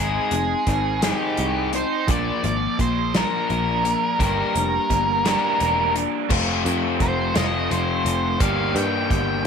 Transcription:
Already playing: G#1 G#3 C4 D#4 G#4
0.31 F1 G#3 C4 D#4, closed hi-hat
0.67 G#1 C4 D#4, kick, closed hi-hat
1.02 C4 D#4 G4 G#4, snare, closed hi-hat
1.37 C2, closed hi-hat
1.73 C4 D#4 C5, closed hi-hat
2.08 A#1 A#2 F3 A#3 D4 D5, kick, closed hi-hat
2.44 G#1 F3 A#3 D5, closed hi-hat
2.79 A#1 F3 A#3 C5, kick, closed hi-hat
3.14 F3 A#3 D4 A#4, snare, closed hi-hat
3.49 A#1 A#4, closed hi-hat
3.84 F3 A#3 D4, closed hi-hat
4.19 G1 G2 A#3 D4 G4 A#4, kick, closed hi-hat
4.55 F1 G3 A#3 D4, closed hi-hat
4.90 G1 A#3 D4, kick, closed hi-hat
5.25 A#3 D4 G4, snare, closed hi-hat
5.60 E1 A#4, closed hi-hat
5.95 A#3 D4, closed hi-hat
6.29 F1 F2 C3 F3 A3 C4 F4, kick, crash
6.65 F2, closed hi-hat
7.00 F1 C5, kick, closed hi-hat
7.34 F1 F2 C3 F3 A3 C4 F4 D#5, snare, closed hi-hat
7.71 F1 C5, closed hi-hat
8.05 F1, closed hi-hat
8.39 G1 G2 D3 G3 A#3 D4 G4 F5, kick, closed hi-hat
8.75 G2 G5, closed hi-hat
9.10 G1 G5, kick, closed hi-hat

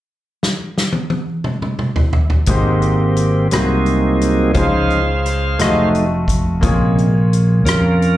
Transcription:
0.43 snare
0.78 snare
0.93 high tom
1.10 high tom
1.44 mid tom
1.62 mid tom
1.79 mid tom
1.96 floor tom
2.13 floor tom
2.30 floor tom
2.46 G#1 G#2 G#3 A#3 C4 D#4 G4 C5, kick, closed hi-hat
2.82 closed hi-hat
3.17 closed hi-hat
3.51 C2 C3 F#3 G#3 A#3 C4 D#4 F#4 G#4 C5, cross-stick, closed hi-hat
3.86 closed hi-hat
4.21 closed hi-hat
4.54 C#2 C#3 F3 G#3 C#4 D#4 F4 G#4 C5 F5, kick, closed hi-hat
4.90 closed hi-hat
5.26 cross-stick, closed hi-hat
5.59 F1 F#3 A3 D#4 F4 F#4 D#5, cross-stick, closed hi-hat
5.95 closed hi-hat
6.28 kick, closed hi-hat
6.61 A#1 A#2 C3 C#3 G#3 A#3 F4 G#4 C#5, kick, closed hi-hat
6.98 closed hi-hat
7.33 closed hi-hat
7.65 F2 C#4 F4 A#4, cross-stick, closed hi-hat
8.02 closed hi-hat

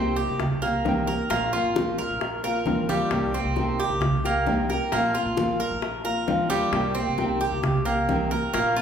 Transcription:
Already playing: C2 C3 D#3 A#3 C4 G4
0.16 G4, high bongo, high conga
0.29 C2
0.40 muted nylon-string guitar stroke, high bongo, high conga, low conga
0.62 A#3 C4 G4, high bongo, high conga
0.85 C3 D#3 A#3 C4 G4, high bongo, low bongo, high conga
1.07 A#3 C4 G4 A#4, high bongo
1.30 A#1 F3 A#3 C4 F4, high bongo
1.53 A#3 C4 F4, high conga
1.65 A#1
1.76 F3 A#3 C4 F4, high bongo, high conga
1.98 A#4, high bongo, high conga
2.10 A#1
2.20 muted nylon-string guitar stroke, high bongo, high conga
2.43 A#3 C4 F4 A#4, high bongo, high conga
2.65 F3 A#3 C4 F4, high bongo, low bongo, high conga
2.89 G3 A#3 C4 F4, high bongo, high conga
3.10 C2 C3 D#3 A#3 C4 G4, high bongo, high conga
3.33 A#3 C4 G4, high conga
3.45 C2
3.56 C3 D#3 A#3 C4 G4, high bongo, high conga
3.79 G4, high bongo, high conga
3.90 C2
4.01 muted nylon-string guitar stroke, high bongo, high conga, low conga
4.24 A#3 C4 G4, high bongo, high conga
4.46 C3 D#3 A#3 C4 G4, high bongo, low bongo, high conga
4.70 A#3 C4 G4 A#4, high bongo
4.92 A#1 F3 A#3 C4 F4, high bongo, high conga
5.15 A#3 C4 F4, high conga
5.25 A#1
5.37 F3 A#3 C4 F4, high bongo, high conga
5.59 A#4, high bongo, high conga
5.71 A#1
5.82 muted nylon-string guitar stroke, high bongo, high conga
6.04 A#3 C4 F4 A#4, high bongo, high conga
6.27 F3 A#3 C4 F4, high bongo, low bongo, high conga
6.50 G3 A#3 C4 F4, high bongo, high conga
6.71 C2 C3 D#3 A#3 C4 G4, high bongo, high conga
6.95 A#3 C4 G4, high conga
7.07 C2
7.18 C3 D#3 A#3 C4 G4, high bongo, high conga
7.40 G4, high bongo, high conga
7.51 C2
7.63 muted nylon-string guitar stroke, high bongo, high conga, low conga
7.85 A#3 C4 G4, high bongo, high conga
8.08 C3 D#3 A#3 C4 G4, high bongo, low bongo, high conga
8.31 A#3 C4 G4 A#4, high bongo
8.53 A#1 F3 A#3 C4 F4, high bongo, high conga
8.76 A#3 C4 F4, high conga

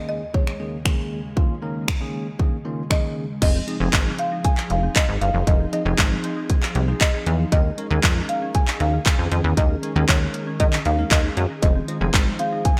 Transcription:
Already playing: D#2 C#3 D#3 G#3 A#3 C#4 G#4
0.09 D#5
0.34 D#3 A#3 C#4 G#4 C#5, kick
0.47 finger snap
0.59 D#3 A#3 C#4 G#4
0.85 D#3 A#3 C#4 G#4, finger snap, kick
1.36 D#3 A#3 C#4 F4, kick
1.62 D#3 A#3 C#4 A#4
1.88 finger snap, kick
2.01 D#3 A#3 C#4 G#4
2.39 D#3 A#3 C#4 G#4, kick
2.65 D#3 A#3 C#4 F4
2.90 D#3 A#3 C#4 G#4 D#5, finger snap, kick
3.42 F1 F3 C4 D#4 G#4 D#5, kick, closed hi-hat, crash
3.55 C4
3.67 F3 C4 D#4 G#4, closed hi-hat
3.80 F1 F3 C4 D#4 G#4
3.93 G#1, kick, clap, closed hi-hat
4.06 F3
4.19 C4 F5, closed hi-hat
4.32 D#4
4.44 G#4 G#5, kick, closed hi-hat
4.58 F5, clap
4.70 F1 F3 F5, closed hi-hat
4.83 C4
4.96 D#5, kick, clap, closed hi-hat
5.09 G#1 G#4
5.21 G1 F5, closed hi-hat
5.34 F#1 F3
5.47 F1 F3 C4 D#4 A#4 D#5, kick, closed hi-hat
5.60 C4
5.72 F3 C4 D#4 G#4 D#5, closed hi-hat
5.85 F1 F3 C4 D#4 G#4
5.98 G#1, kick, clap, closed hi-hat
6.11 F3
6.24 C4, closed hi-hat
6.37 D#4
6.49 G#4, kick, closed hi-hat
6.62 F5, clap
6.75 C2 F3, closed hi-hat
6.88 F3 C4 D#4 G#4
7.01 D#5, kick, clap, closed hi-hat
7.14 G#4
7.26 E2 F5, closed hi-hat
7.39 F3
7.52 D#2 D#3 G#3 C#4 D#4 G#4 A#4 D#5, kick, closed hi-hat
7.65 A#3
7.78 G#3 C#4 D#4 A#4, closed hi-hat
7.90 D#2 G#3 C#4 D#4 G#4 A#4
8.03 F2, kick, clap, closed hi-hat
8.16 D#3
8.29 A#3 F5, closed hi-hat
8.42 C#4
8.55 G#4 G#5, kick, closed hi-hat
8.68 D#5, clap
8.80 D#2 D#3 F5, closed hi-hat
8.93 A#3
9.06 kick, clap, closed hi-hat
9.19 F2 G#4
9.32 F2 D#5, closed hi-hat
9.44 E2 D#3
9.57 D#2 D#3 G#3 C#4 D#4 A#4 D#5, kick, closed hi-hat
9.70 A#3
9.83 G#3 C#4 D#4 A#4, closed hi-hat
9.95 D#2 G#3 C#4 D#4 G#4 A#4
10.09 D#2 C#5, kick, clap, closed hi-hat
10.21 D#3
10.34 A#3, closed hi-hat
10.47 C#4
10.60 D#3 G#4 D#5, kick, closed hi-hat
10.72 D#5, clap
10.85 D#2 D#3 F5, closed hi-hat
10.98 G#3 A#3 C#4 D#4 A#4
11.11 D#2 D#5, kick, clap, closed hi-hat
11.24 G#4
11.37 F#2 D#5, closed hi-hat
11.50 D#3
11.62 F1 F3 G#3 D#4 F4 C5 D#5, kick, closed hi-hat
11.76 C4
11.88 G#3 D#4 F4 C5, closed hi-hat
12.01 F1 G#3 D#4 F4 G#4 C5
12.14 G#1, kick, clap, closed hi-hat
12.27 F3
12.39 C4 F5, closed hi-hat
12.53 D#4
12.65 G#4 G#5, kick, closed hi-hat

